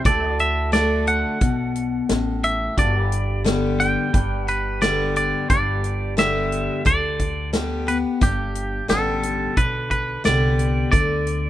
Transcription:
0.05 1.23 D2 medium
0.05 0.71 D3 medium
0.05 0.25 G4 medium
0.05 2.75 A4 medium
0.05 0.37 D5 medium
0.05 0.32 E5 medium
0.05 kick loud
0.05 closed hi-hat medium
0.25 2.75 F#4 medium
0.32 2.76 D5 medium
0.39 0.73 E5 medium
0.39 closed hi-hat medium
0.72 1.37 D3 medium
0.72 1.38 A3 medium
0.72 1.38 D4 medium
0.72 1.39 F#4 medium
0.72 1.07 D5 loud
0.72 snare loud
0.72 closed hi-hat medium
1.07 2.40 F#5 medium
1.07 closed hi-hat medium
1.41 1.99 B1 medium
1.41 2.06 B2 medium
1.41 kick loud
1.41 closed hi-hat medium
1.76 closed hi-hat medium
2.09 2.67 A1 medium
2.09 2.74 A2 medium
2.09 snare loud
2.09 closed hi-hat medium
2.44 2.78 E5 medium
2.44 closed hi-hat medium
2.77 3.95 G1 medium
2.77 4.07 G2 medium
2.77 2.97 F#4 medium
2.77 3.03 A4 medium
2.77 3.42 D5 medium
2.77 4.13 D5 medium
2.77 kick loud
2.77 closed hi-hat medium
2.97 4.12 G4 medium
3.03 4.13 B4 medium
3.12 closed hi-hat medium
3.44 4.10 D3 medium
3.44 4.10 G3 medium
3.44 4.10 B3 medium
3.44 4.11 G4 medium
3.44 snare loud
3.44 closed hi-hat medium
3.80 4.45 G5 medium
3.80 closed hi-hat medium
4.14 5.31 G1 medium
4.14 5.43 G2 medium
4.14 5.48 G4 medium
4.14 5.49 B4 medium
4.14 5.49 D5 medium
4.14 kick loud
4.14 closed hi-hat medium
4.45 4.83 B4 medium
4.45 4.78 F#5 medium
4.45 closed hi-hat medium
4.81 5.46 D3 medium
4.81 5.46 G3 medium
4.81 5.47 B3 medium
4.81 5.47 G4 medium
4.81 5.16 D5 medium
4.81 snare loud
4.81 closed hi-hat medium
5.16 5.49 D5 medium
5.16 closed hi-hat medium
5.50 6.67 G1 medium
5.50 6.79 G2 medium
5.50 10.89 G4 medium
5.50 10.90 B4 medium
5.50 6.14 D5 medium
5.50 10.90 D5 medium
5.50 kick loud
5.50 closed hi-hat medium
5.84 closed hi-hat medium
6.17 6.82 D3 medium
6.17 6.82 G3 medium
6.17 6.83 B3 medium
6.17 6.83 G4 loud
6.17 6.86 E5 loud
6.17 snare loud
6.17 closed hi-hat medium
6.52 closed hi-hat medium
6.85 8.03 D2 medium
6.85 7.52 D3 medium
6.85 7.50 D5 medium
6.85 kick loud
6.85 closed hi-hat medium
7.20 kick medium
7.20 closed hi-hat medium
7.53 7.86 D3 medium
7.53 7.86 G3 medium
7.53 7.86 B3 medium
7.53 7.85 G4 medium
7.53 snare loud
7.53 closed hi-hat medium
7.87 8.21 B3 soft
7.87 8.20 G4 medium
7.87 7.97 B4 medium
7.87 closed hi-hat medium
8.21 8.80 G1 loud
8.21 9.50 G2 medium
8.21 8.89 G4 medium
8.21 kick loud
8.21 closed hi-hat medium
8.55 closed hi-hat medium
8.88 9.47 A1 medium
8.88 9.53 D3 medium
8.88 9.54 G3 loud
8.88 9.54 B3 loud
8.88 9.54 G4 loud
8.88 9.60 A4 medium
8.88 snare loud
8.88 closed hi-hat medium
9.23 closed hi-hat medium
9.57 10.15 B1 medium
9.57 10.23 D3 medium
9.57 9.90 B4 medium
9.57 kick loud
9.57 closed hi-hat medium
9.91 10.25 B4 medium
9.91 kick medium
9.91 closed hi-hat medium
10.24 10.83 C2 medium
10.24 10.89 D3 medium
10.24 10.90 G3 medium
10.24 10.90 B3 medium
10.24 10.90 G4 medium
10.24 10.90 D5 medium
10.24 snare loud
10.24 closed hi-hat medium
10.59 closed hi-hat medium
10.92 11.50 D2 medium
10.92 11.50 D3 medium
10.92 11.50 D5 medium
10.92 kick loud
10.92 closed hi-hat medium
11.27 closed hi-hat medium

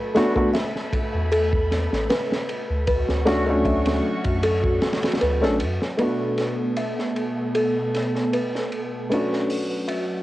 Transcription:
0.00 2.84 A4 medium
0.00 2.84 B5 medium
0.15 0.31 A3 loud
0.15 0.31 B3 medium
0.15 0.31 D4 medium
0.15 0.32 F#4 loud
0.15 snare medium
0.15 ride medium
0.35 0.47 A3 medium
0.35 0.48 B3 medium
0.35 0.48 D4 medium
0.35 0.48 F#4 medium
0.35 kick medium
0.53 1.28 E5 loud
0.53 snare loud
0.53 ride medium
0.76 snare soft
0.93 kick medium
0.93 ride medium
1.14 1.88 E2 medium
1.32 2.06 A4 medium
1.32 ride medium
1.53 kick medium
1.71 snare soft
1.71 ride medium
1.92 2.08 A1 medium
1.92 snare soft
2.10 2.84 B4 medium
2.10 snare loud
2.10 ride medium
2.32 snare medium
2.49 ride medium
2.70 3.04 D2 loud
2.87 5.96 F#4 medium
2.87 3.11 B4 medium
2.87 5.96 C#6 medium
2.87 kick medium
2.87 ride medium
3.09 4.01 D2 medium
3.09 snare soft
3.25 3.42 A3 loud
3.25 3.42 C#4 medium
3.25 3.43 D4 medium
3.25 3.43 F#4 loud
3.25 snare loud
3.25 ride medium
3.46 5.37 A3 medium
3.46 5.38 C#4 medium
3.46 5.39 D4 medium
3.46 5.39 F#4 loud
3.65 4.40 E5 loud
3.65 kick medium
3.65 ride medium
3.86 snare loud
3.86 ride medium
4.24 4.79 F#2 medium
4.24 kick medium
4.24 ride medium
4.43 5.18 A4 medium
4.43 ride medium
4.64 kick medium
4.82 snare medium
4.82 ride medium
4.93 snare medium
4.93 ride medium
5.03 snare medium
5.03 ride medium
5.12 snare medium
5.12 ride medium
5.21 5.44 D2 loud
5.21 5.95 B4 medium
5.21 snare soft
5.21 ride medium
5.42 5.62 A1 medium
5.42 5.54 A3 medium
5.42 5.54 C#4 medium
5.42 5.54 D4 medium
5.42 5.55 A4 medium
5.42 snare soft
5.60 5.79 F#2 loud
5.60 ride medium
5.82 snare soft
5.97 9.06 A3 medium
5.97 9.07 B3 medium
5.97 9.06 B3 medium
5.97 9.07 D4 medium
5.97 9.07 A4 medium
5.97 6.23 B4 medium
5.97 ride medium
6.01 9.08 F#4 medium
6.38 snare soft
6.38 ride medium
6.77 7.51 E5 medium
6.77 ride medium
6.99 snare soft
7.16 ride medium
7.55 8.29 A4 medium
7.55 ride medium
7.94 snare soft
7.94 ride medium
8.15 snare soft
8.33 9.07 B4 medium
8.33 ride medium
8.55 snare soft
8.72 ride medium
9.10 10.23 A3 medium
9.10 10.23 C#4 medium
9.10 10.23 D4 medium
9.10 10.23 F#4 medium
9.10 9.34 B4 medium
9.10 ride medium
9.14 10.23 F#4 medium
9.33 snare soft
9.50 open hi-hat medium
9.88 10.23 E5 medium
9.88 ride medium

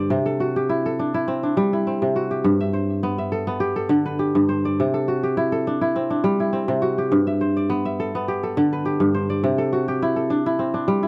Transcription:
0.00 0.16 G2 medium
0.00 0.16 D3 medium
0.00 0.46 G4 medium
0.00 0.25 A4 medium
0.00 1.00 C5 medium
0.00 1.08 D5 medium
0.10 2.01 C3 medium
0.26 0.85 A4 medium
0.40 1.63 F#4 medium
0.56 1.97 G4 medium
0.69 1.14 E4 medium
0.86 2.17 A4 medium
0.99 1.43 D4 medium
1.14 1.73 E4 medium
1.28 1.87 C4 medium
1.43 3.11 D4 medium
1.57 2.50 G3 medium
1.73 3.30 E4 medium
1.87 3.09 C4 medium
2.02 2.50 C3 medium
2.16 3.66 F#4 medium
2.31 3.60 G4 medium
2.44 4.34 G2 medium
2.60 3.18 E5 medium
2.73 3.53 C5 medium
3.03 3.47 B3 medium
3.18 4.22 E5 medium
3.32 3.76 A4 medium
3.47 4.55 B3 medium
3.60 4.19 G4 medium
3.76 4.93 A4 medium
3.89 4.83 D3 medium
4.06 4.55 B4 medium
4.19 5.14 G4 medium
4.35 4.83 G2 medium
4.49 5.68 C5 medium
4.65 5.76 D5 medium
4.80 6.67 C3 medium
4.94 5.52 A4 medium
5.08 6.30 F#4 medium
5.23 6.65 G4 medium
5.37 5.81 E4 medium
5.52 6.84 A4 medium
5.67 6.10 D4 medium
5.81 6.40 E4 medium
5.96 6.52 C4 medium
6.10 7.78 D4 medium
6.24 7.16 G3 medium
6.40 7.97 E4 medium
6.53 7.76 C4 medium
6.68 7.16 C3 medium
6.82 8.28 F#4 medium
6.98 8.28 G4 medium
7.12 8.99 G2 medium
7.27 7.85 E5 medium
7.41 8.21 C5 medium
7.57 8.67 D5 medium
7.70 8.15 B3 medium
7.85 8.89 E5 medium
8.00 8.43 A4 medium
8.15 9.20 B3 medium
8.28 8.85 G4 medium
8.43 9.58 A4 medium
8.57 9.48 D3 medium
8.73 9.20 B4 medium
8.85 9.79 G4 medium
9.00 9.48 G2 medium
9.14 10.33 C5 medium
9.30 10.41 D5 medium
9.44 11.08 C3 medium
9.58 10.16 A4 medium
9.73 10.94 F#4 medium
9.88 11.08 G4 medium
10.02 10.46 E4 medium
10.16 11.08 A4 medium
10.30 10.73 D4 medium
10.46 11.02 E4 medium
10.59 11.08 C4 medium
10.74 11.08 D4 medium
10.88 11.08 G3 medium
11.03 11.08 E4 medium

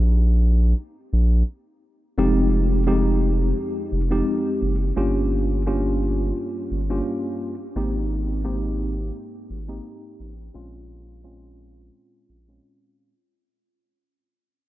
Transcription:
0.00 0.74 A#1 loud
1.13 1.43 A#1 loud
2.18 3.53 F1 loud
2.18 2.82 F2 loud
2.18 2.82 G#3 medium
2.18 2.83 C4 medium
2.18 2.83 D#4 medium
2.18 2.83 G4 loud
2.86 4.00 F2 loud
2.86 4.00 G#3 medium
2.86 4.00 C4 medium
2.86 4.00 D#4 medium
2.86 4.00 G4 loud
3.92 4.22 F1 medium
4.11 4.74 F2 medium
4.11 4.74 G#3 medium
4.11 4.75 C4 medium
4.11 4.75 D#4 medium
4.11 4.75 G4 loud
4.62 4.92 F#1 medium
4.96 6.32 G1 loud
4.96 5.61 G2 medium
4.96 5.61 A#3 medium
4.96 5.61 C#4 medium
4.96 5.61 F4 medium
4.96 5.62 G4 loud
5.66 6.79 G2 medium
5.66 6.79 A#3 medium
5.66 6.80 C#4 medium
5.66 6.80 F4 medium
5.66 6.80 G4 loud
6.71 7.01 G1 medium
6.90 7.53 G2 loud
6.90 7.54 A#3 medium
6.90 7.54 C#4 medium
6.90 7.54 F4 medium
6.90 7.54 G4 loud
7.76 9.11 G#1 loud
7.76 8.40 G#2 loud
7.76 8.40 A#3 medium
7.76 8.41 C4 medium
7.76 8.41 D#4 medium
7.76 8.41 G4 loud
8.44 9.58 G#2 medium
8.44 9.58 A#3 medium
8.44 9.58 C4 medium
8.44 9.58 D#4 medium
8.44 9.58 G4 loud
9.50 9.80 G#1 loud
9.68 10.32 G#2 medium
9.68 10.32 A#3 medium
9.68 10.32 C4 medium
9.68 10.33 D#4 medium
9.68 10.33 G4 loud
10.20 10.50 A1 medium
10.54 11.90 A#1 loud
10.54 11.19 A#2 loud
10.54 11.19 G#3 medium
10.54 11.19 C4 medium
10.54 11.19 C#4 medium
10.54 11.20 F4 loud
11.23 12.37 A#2 medium
11.23 12.37 G#3 medium
11.23 12.37 C4 medium
11.23 12.37 C#4 medium
11.23 12.37 F4 loud
12.29 12.59 A#1 medium
12.48 13.12 A#2 medium
12.48 13.12 G#3 medium
12.48 13.12 C4 medium
12.48 13.12 C#4 medium
12.48 13.12 F4 loud

